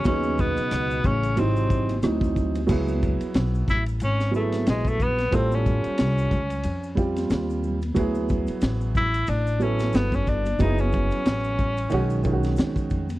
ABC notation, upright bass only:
X:1
M:4/4
L:1/16
Q:"Swing 16ths" 1/4=91
K:C#m
V:1 name="Upright bass" clef=bass
D,,3 z C,,2 A,,,2 G,,,4 =D,,4 | C,,3 z B,,,2 A,,,2 G,,,4 ^A,,,4 | A,,,3 z ^B,,,2 C,,2 ^E,,4 D,,4 | =D,,3 z A,,,4 A,,,4 =G,,,4 |
F,,,3 z A,,,4 B,,,4 ^E,,4 |]